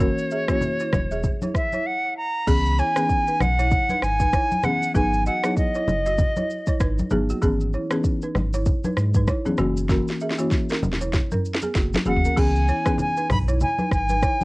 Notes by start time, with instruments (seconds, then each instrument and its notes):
Already playing: sub bass F#1, flute C#5
0.00 marimba E3 A#3 C#4 F#4, balafon C#4 A#4, kick, shaker
0.19 shaker
0.31 balafon G#4 E5, shaker
0.48 marimba E3 A#3 C#4 F#4, balafon E4 C#5, kick, cross-stick, shaker
0.61 low conga, shaker
0.80 balafon E4 C#5, shaker
0.93 sub bass E1, kick, cross-stick, high conga, low conga, shaker
1.11 balafon G#4 E5, shaker
1.23 kick, low conga, shaker
1.42 balafon E4 C#5, high conga, shaker
1.54 flute E5, kick, cross-stick, shaker
1.72 balafon E4 C#5, high conga, shaker
1.86 flute F#5
2.17 flute A#5
2.47 sub bass C#2, marimba E3 B3 C#4 G#4, balafon B3 G#4, flute B5, kick, crash, shaker
2.66 shaker
2.78 balafon E4 C#5, flute G#5, shaker
2.96 marimba E3 B3 C#4 G#4, balafon D#4 B4, cross-stick, shaker
3.09 kick, shaker
3.27 balafon D#4 B4, shaker
3.40 sub bass B1, flute F#5, cross-stick, high conga, low conga, shaker
3.59 balafon E4 C#5, shaker
3.71 kick, low conga, shaker
3.89 balafon D#4 B4, high conga, shaker
4.02 sub bass G#1, flute G#5, cross-stick, shaker
4.20 balafon D#4 B4, kick, high conga, shaker
4.33 balafon E4 C#5, kick, cross-stick, shaker
4.51 high conga, shaker
4.63 marimba E3 B3 C#4 G#4, flute F#5, cross-stick, high conga, low conga, shaker
4.82 shaker
4.94 sub bass G#1, marimba F#3 B3 D#4 G#4, balafon D#4 B4, flute G#5, kick, shaker
5.13 shaker
5.26 balafon F#4 D#5, flute F#5, shaker
5.43 marimba F#3 B3 D#4 G#4, balafon E4 C#5, cross-stick, shaker
5.57 flute D#5, kick, shaker
5.75 balafon E4 C#5, shaker
5.88 sub bass F#1, high conga, low conga, shaker
6.06 balafon F#4 D#5, shaker
6.18 kick, low conga, shaker
6.37 balafon E4 C#5, high conga, shaker
6.50 shaker
6.67 balafon E4 C#5, kick, high conga, shaker
6.80 sub bass G#1, balafon D#4 B4, kick, cross-stick, shaker
6.99 high conga, shaker
7.10 sub bass G#1, marimba F#3 B3 D#4 G#4, balafon B3 G#4, high conga, low conga, shaker
7.30 balafon A#3 F#4, shaker
7.42 sub bass G#1, marimba E3 B3 C#4 G#4, balafon B3 G#4, kick, shaker
7.61 shaker
7.73 balafon E4 C#5, shaker
7.91 marimba E3 B3 C#4 G#4, balafon D#4 B4, cross-stick, shaker
8.04 kick, shaker
8.22 balafon D#4 B4, shaker
8.35 sub bass G#1, cross-stick, high conga, low conga, shaker
8.53 balafon E4 C#5, shaker
8.66 kick, low conga, shaker
8.84 balafon D#4 B4, high conga, shaker
8.97 sub bass G#2, cross-stick, shaker
9.14 balafon D#4 B4, kick, high conga, shaker
9.28 balafon E4 C#5, kick, cross-stick, shaker
9.46 marimba E3 B3 C#4 G#4, high conga, shaker
9.58 sub bass F#1, marimba E3 A#3 C#4 F#4, cross-stick, high conga, low conga, shaker
9.77 shaker
9.89 marimba E3 A#3 C#4 F#4, balafon C#4 A#4, kick, snare, shaker
10.08 snare, shaker
10.21 balafon G#4 E5, shaker
10.31 snare
10.38 marimba E3 A#3 C#4 F#4, balafon E4 C#5, shaker
10.51 kick, snare, shaker
10.69 balafon C#4 A#4, snare, shaker
10.82 sub bass E1, high conga, low conga, shaker
10.93 snare
11.01 balafon E4 C#5, shaker
11.13 kick, snare, low conga, shaker
11.31 balafon C#4 A#4, mid tom, high conga, shaker
11.45 shaker
11.55 snare
11.62 balafon B3 G#4, high conga, shaker
11.75 sub bass F#1, balafon A#3 F#4, kick, snare, shaker
11.93 snare, high conga, shaker
12.05 sub bass F#1, marimba E3 A#3 C#4 F#4, balafon B3 G#4, flute F#5, high conga, low conga, shaker
12.16 floor tom
12.25 balafon C#4 A#4, shaker
12.36 sub bass C#2, marimba E3 B3 C#4 G#4, balafon B3 G#4, flute G#5, kick, crash, shaker
12.55 shaker
12.68 balafon E4 C#5, shaker
12.85 marimba E3 B3 C#4 G#4, balafon D#4 B4, kick, cross-stick, shaker
12.98 flute G#5, low conga, shaker
13.17 balafon D#4 B4, shaker
13.29 sub bass B1, flute B5, kick, cross-stick, mid tom, open hi-hat, high conga, low conga, shaker
13.48 balafon E4 C#5, shaker
13.60 flute G#5, low conga, shaker
13.79 balafon D#4 B4, high conga, shaker
13.91 sub bass G#1, flute G#5, kick, cross-stick, shaker
14.09 balafon D#4 B4, high conga, shaker
14.22 balafon E4 C#5, kick, cross-stick, shaker
14.41 high conga, shaker